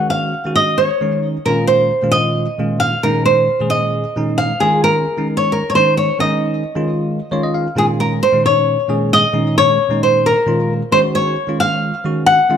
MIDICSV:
0, 0, Header, 1, 3, 480
1, 0, Start_track
1, 0, Tempo, 449775
1, 1574, Time_signature, 7, 3, 24, 8
1, 13417, End_track
2, 0, Start_track
2, 0, Title_t, "Nylon-string guitar"
2, 0, Program_c, 0, 24
2, 107, Note_on_c, 0, 77, 93
2, 588, Note_off_c, 0, 77, 0
2, 592, Note_on_c, 0, 75, 80
2, 829, Note_on_c, 0, 73, 78
2, 851, Note_off_c, 0, 75, 0
2, 1343, Note_off_c, 0, 73, 0
2, 1553, Note_on_c, 0, 70, 78
2, 1783, Note_off_c, 0, 70, 0
2, 1787, Note_on_c, 0, 72, 82
2, 2257, Note_on_c, 0, 75, 93
2, 2296, Note_off_c, 0, 72, 0
2, 2954, Note_off_c, 0, 75, 0
2, 2986, Note_on_c, 0, 77, 82
2, 3223, Note_off_c, 0, 77, 0
2, 3237, Note_on_c, 0, 70, 77
2, 3469, Note_off_c, 0, 70, 0
2, 3474, Note_on_c, 0, 72, 78
2, 3948, Note_on_c, 0, 75, 86
2, 3980, Note_off_c, 0, 72, 0
2, 4667, Note_off_c, 0, 75, 0
2, 4672, Note_on_c, 0, 77, 83
2, 4912, Note_on_c, 0, 68, 78
2, 4932, Note_off_c, 0, 77, 0
2, 5158, Note_off_c, 0, 68, 0
2, 5162, Note_on_c, 0, 70, 82
2, 5616, Note_off_c, 0, 70, 0
2, 5731, Note_on_c, 0, 73, 76
2, 5883, Note_off_c, 0, 73, 0
2, 5892, Note_on_c, 0, 70, 71
2, 6079, Note_on_c, 0, 73, 54
2, 6080, Note_off_c, 0, 70, 0
2, 6134, Note_off_c, 0, 73, 0
2, 6138, Note_on_c, 0, 72, 75
2, 6371, Note_off_c, 0, 72, 0
2, 6375, Note_on_c, 0, 73, 66
2, 6614, Note_off_c, 0, 73, 0
2, 6619, Note_on_c, 0, 75, 77
2, 7776, Note_off_c, 0, 75, 0
2, 8306, Note_on_c, 0, 68, 75
2, 8370, Note_off_c, 0, 68, 0
2, 8538, Note_on_c, 0, 70, 80
2, 8780, Note_on_c, 0, 72, 76
2, 8786, Note_off_c, 0, 70, 0
2, 9021, Note_off_c, 0, 72, 0
2, 9025, Note_on_c, 0, 73, 80
2, 9699, Note_off_c, 0, 73, 0
2, 9745, Note_on_c, 0, 75, 92
2, 10217, Note_off_c, 0, 75, 0
2, 10221, Note_on_c, 0, 73, 90
2, 10701, Note_off_c, 0, 73, 0
2, 10705, Note_on_c, 0, 72, 78
2, 10948, Note_off_c, 0, 72, 0
2, 10951, Note_on_c, 0, 70, 84
2, 11447, Note_off_c, 0, 70, 0
2, 11657, Note_on_c, 0, 72, 88
2, 11722, Note_off_c, 0, 72, 0
2, 11899, Note_on_c, 0, 73, 90
2, 12375, Note_off_c, 0, 73, 0
2, 12380, Note_on_c, 0, 77, 99
2, 13085, Note_off_c, 0, 77, 0
2, 13089, Note_on_c, 0, 78, 95
2, 13417, Note_off_c, 0, 78, 0
2, 13417, End_track
3, 0, Start_track
3, 0, Title_t, "Tine electric piano"
3, 0, Program_c, 1, 4
3, 0, Note_on_c, 1, 51, 63
3, 0, Note_on_c, 1, 56, 61
3, 0, Note_on_c, 1, 61, 58
3, 0, Note_on_c, 1, 66, 72
3, 345, Note_off_c, 1, 51, 0
3, 348, Note_off_c, 1, 56, 0
3, 351, Note_off_c, 1, 61, 0
3, 355, Note_off_c, 1, 66, 0
3, 479, Note_on_c, 1, 51, 55
3, 481, Note_on_c, 1, 56, 45
3, 487, Note_on_c, 1, 61, 48
3, 495, Note_on_c, 1, 66, 64
3, 940, Note_off_c, 1, 51, 0
3, 942, Note_off_c, 1, 56, 0
3, 945, Note_off_c, 1, 61, 0
3, 949, Note_off_c, 1, 66, 0
3, 1074, Note_on_c, 1, 51, 56
3, 1078, Note_on_c, 1, 56, 55
3, 1084, Note_on_c, 1, 61, 53
3, 1090, Note_on_c, 1, 63, 62
3, 1448, Note_off_c, 1, 51, 0
3, 1449, Note_off_c, 1, 56, 0
3, 1452, Note_off_c, 1, 61, 0
3, 1455, Note_off_c, 1, 63, 0
3, 1555, Note_on_c, 1, 46, 65
3, 1563, Note_on_c, 1, 51, 63
3, 1565, Note_on_c, 1, 56, 53
3, 1568, Note_on_c, 1, 61, 61
3, 1575, Note_on_c, 1, 65, 72
3, 2019, Note_off_c, 1, 46, 0
3, 2023, Note_off_c, 1, 51, 0
3, 2024, Note_off_c, 1, 56, 0
3, 2025, Note_off_c, 1, 61, 0
3, 2029, Note_off_c, 1, 65, 0
3, 2158, Note_on_c, 1, 46, 56
3, 2163, Note_on_c, 1, 51, 50
3, 2166, Note_on_c, 1, 56, 52
3, 2173, Note_on_c, 1, 61, 52
3, 2175, Note_on_c, 1, 65, 65
3, 2620, Note_off_c, 1, 46, 0
3, 2623, Note_off_c, 1, 51, 0
3, 2624, Note_off_c, 1, 56, 0
3, 2628, Note_off_c, 1, 61, 0
3, 2629, Note_off_c, 1, 65, 0
3, 2755, Note_on_c, 1, 46, 58
3, 2760, Note_on_c, 1, 51, 54
3, 2764, Note_on_c, 1, 56, 52
3, 2769, Note_on_c, 1, 61, 48
3, 2772, Note_on_c, 1, 65, 65
3, 3128, Note_off_c, 1, 46, 0
3, 3131, Note_off_c, 1, 51, 0
3, 3133, Note_off_c, 1, 56, 0
3, 3136, Note_off_c, 1, 61, 0
3, 3137, Note_off_c, 1, 65, 0
3, 3236, Note_on_c, 1, 46, 62
3, 3239, Note_on_c, 1, 51, 63
3, 3243, Note_on_c, 1, 56, 60
3, 3247, Note_on_c, 1, 61, 59
3, 3253, Note_on_c, 1, 63, 73
3, 3700, Note_off_c, 1, 46, 0
3, 3701, Note_off_c, 1, 51, 0
3, 3703, Note_off_c, 1, 56, 0
3, 3706, Note_off_c, 1, 61, 0
3, 3709, Note_off_c, 1, 63, 0
3, 3838, Note_on_c, 1, 46, 58
3, 3842, Note_on_c, 1, 51, 48
3, 3845, Note_on_c, 1, 56, 50
3, 3852, Note_on_c, 1, 61, 52
3, 3857, Note_on_c, 1, 68, 64
3, 4301, Note_off_c, 1, 46, 0
3, 4303, Note_off_c, 1, 51, 0
3, 4305, Note_off_c, 1, 56, 0
3, 4308, Note_off_c, 1, 61, 0
3, 4311, Note_off_c, 1, 68, 0
3, 4435, Note_on_c, 1, 46, 59
3, 4440, Note_on_c, 1, 51, 57
3, 4448, Note_on_c, 1, 56, 52
3, 4451, Note_on_c, 1, 61, 57
3, 4456, Note_on_c, 1, 63, 70
3, 4809, Note_off_c, 1, 46, 0
3, 4812, Note_off_c, 1, 51, 0
3, 4816, Note_off_c, 1, 56, 0
3, 4817, Note_off_c, 1, 61, 0
3, 4820, Note_off_c, 1, 63, 0
3, 4920, Note_on_c, 1, 51, 70
3, 4925, Note_on_c, 1, 56, 61
3, 4927, Note_on_c, 1, 61, 56
3, 4937, Note_on_c, 1, 65, 73
3, 5383, Note_off_c, 1, 51, 0
3, 5385, Note_off_c, 1, 56, 0
3, 5386, Note_off_c, 1, 61, 0
3, 5391, Note_off_c, 1, 65, 0
3, 5519, Note_on_c, 1, 51, 57
3, 5524, Note_on_c, 1, 56, 53
3, 5528, Note_on_c, 1, 61, 50
3, 5534, Note_on_c, 1, 63, 65
3, 5983, Note_off_c, 1, 51, 0
3, 5985, Note_off_c, 1, 56, 0
3, 5987, Note_off_c, 1, 61, 0
3, 5990, Note_off_c, 1, 63, 0
3, 6125, Note_on_c, 1, 51, 63
3, 6130, Note_on_c, 1, 56, 61
3, 6136, Note_on_c, 1, 61, 49
3, 6142, Note_on_c, 1, 63, 63
3, 6495, Note_off_c, 1, 51, 0
3, 6497, Note_off_c, 1, 56, 0
3, 6500, Note_off_c, 1, 61, 0
3, 6503, Note_off_c, 1, 63, 0
3, 6604, Note_on_c, 1, 51, 67
3, 6610, Note_on_c, 1, 56, 55
3, 6616, Note_on_c, 1, 61, 61
3, 6622, Note_on_c, 1, 63, 72
3, 7065, Note_off_c, 1, 51, 0
3, 7068, Note_off_c, 1, 56, 0
3, 7071, Note_off_c, 1, 61, 0
3, 7074, Note_off_c, 1, 63, 0
3, 7204, Note_on_c, 1, 51, 68
3, 7209, Note_on_c, 1, 56, 65
3, 7214, Note_on_c, 1, 61, 55
3, 7221, Note_on_c, 1, 65, 74
3, 7665, Note_off_c, 1, 51, 0
3, 7668, Note_off_c, 1, 56, 0
3, 7670, Note_off_c, 1, 61, 0
3, 7673, Note_off_c, 1, 65, 0
3, 7805, Note_on_c, 1, 51, 70
3, 7808, Note_on_c, 1, 56, 64
3, 7811, Note_on_c, 1, 73, 62
3, 7816, Note_on_c, 1, 61, 58
3, 7822, Note_on_c, 1, 65, 77
3, 7926, Note_off_c, 1, 73, 0
3, 7933, Note_on_c, 1, 75, 65
3, 8047, Note_off_c, 1, 75, 0
3, 8051, Note_on_c, 1, 77, 56
3, 8175, Note_off_c, 1, 51, 0
3, 8176, Note_off_c, 1, 56, 0
3, 8180, Note_off_c, 1, 61, 0
3, 8183, Note_off_c, 1, 65, 0
3, 8275, Note_on_c, 1, 46, 64
3, 8278, Note_off_c, 1, 77, 0
3, 8284, Note_on_c, 1, 51, 65
3, 8289, Note_on_c, 1, 56, 62
3, 8291, Note_on_c, 1, 61, 58
3, 8297, Note_on_c, 1, 65, 74
3, 8740, Note_off_c, 1, 46, 0
3, 8745, Note_off_c, 1, 51, 0
3, 8748, Note_off_c, 1, 56, 0
3, 8749, Note_off_c, 1, 61, 0
3, 8751, Note_off_c, 1, 65, 0
3, 8877, Note_on_c, 1, 46, 58
3, 8881, Note_on_c, 1, 51, 50
3, 8884, Note_on_c, 1, 56, 50
3, 8888, Note_on_c, 1, 61, 54
3, 8892, Note_on_c, 1, 63, 62
3, 9341, Note_off_c, 1, 46, 0
3, 9343, Note_off_c, 1, 51, 0
3, 9345, Note_off_c, 1, 56, 0
3, 9347, Note_off_c, 1, 61, 0
3, 9349, Note_off_c, 1, 63, 0
3, 9478, Note_on_c, 1, 46, 62
3, 9483, Note_on_c, 1, 51, 58
3, 9485, Note_on_c, 1, 56, 58
3, 9492, Note_on_c, 1, 61, 58
3, 9495, Note_on_c, 1, 68, 67
3, 9851, Note_off_c, 1, 46, 0
3, 9854, Note_off_c, 1, 51, 0
3, 9855, Note_off_c, 1, 56, 0
3, 9858, Note_off_c, 1, 61, 0
3, 9860, Note_off_c, 1, 68, 0
3, 9951, Note_on_c, 1, 46, 63
3, 9953, Note_on_c, 1, 51, 57
3, 9958, Note_on_c, 1, 56, 66
3, 9962, Note_on_c, 1, 61, 63
3, 9966, Note_on_c, 1, 63, 70
3, 10418, Note_off_c, 1, 46, 0
3, 10419, Note_off_c, 1, 51, 0
3, 10421, Note_off_c, 1, 56, 0
3, 10424, Note_off_c, 1, 61, 0
3, 10426, Note_off_c, 1, 63, 0
3, 10552, Note_on_c, 1, 46, 58
3, 10560, Note_on_c, 1, 51, 52
3, 10564, Note_on_c, 1, 56, 54
3, 10566, Note_on_c, 1, 61, 49
3, 10575, Note_on_c, 1, 63, 72
3, 11018, Note_off_c, 1, 46, 0
3, 11022, Note_off_c, 1, 51, 0
3, 11024, Note_off_c, 1, 56, 0
3, 11025, Note_off_c, 1, 61, 0
3, 11030, Note_off_c, 1, 63, 0
3, 11162, Note_on_c, 1, 46, 62
3, 11166, Note_on_c, 1, 51, 62
3, 11173, Note_on_c, 1, 56, 58
3, 11176, Note_on_c, 1, 61, 55
3, 11181, Note_on_c, 1, 65, 69
3, 11532, Note_off_c, 1, 46, 0
3, 11535, Note_off_c, 1, 51, 0
3, 11538, Note_off_c, 1, 56, 0
3, 11539, Note_off_c, 1, 61, 0
3, 11542, Note_off_c, 1, 65, 0
3, 11648, Note_on_c, 1, 51, 69
3, 11656, Note_on_c, 1, 56, 67
3, 11660, Note_on_c, 1, 61, 63
3, 11667, Note_on_c, 1, 66, 73
3, 12106, Note_off_c, 1, 51, 0
3, 12110, Note_off_c, 1, 56, 0
3, 12112, Note_off_c, 1, 61, 0
3, 12115, Note_off_c, 1, 66, 0
3, 12242, Note_on_c, 1, 51, 58
3, 12253, Note_on_c, 1, 56, 55
3, 12259, Note_on_c, 1, 61, 53
3, 12264, Note_on_c, 1, 65, 60
3, 12703, Note_off_c, 1, 51, 0
3, 12708, Note_off_c, 1, 56, 0
3, 12711, Note_off_c, 1, 61, 0
3, 12713, Note_off_c, 1, 65, 0
3, 12847, Note_on_c, 1, 51, 60
3, 12855, Note_on_c, 1, 56, 53
3, 12861, Note_on_c, 1, 61, 52
3, 12867, Note_on_c, 1, 66, 67
3, 13214, Note_off_c, 1, 51, 0
3, 13218, Note_off_c, 1, 56, 0
3, 13221, Note_off_c, 1, 61, 0
3, 13224, Note_off_c, 1, 66, 0
3, 13332, Note_on_c, 1, 51, 72
3, 13337, Note_on_c, 1, 56, 66
3, 13342, Note_on_c, 1, 61, 65
3, 13349, Note_on_c, 1, 65, 85
3, 13417, Note_off_c, 1, 51, 0
3, 13417, Note_off_c, 1, 56, 0
3, 13417, Note_off_c, 1, 61, 0
3, 13417, Note_off_c, 1, 65, 0
3, 13417, End_track
0, 0, End_of_file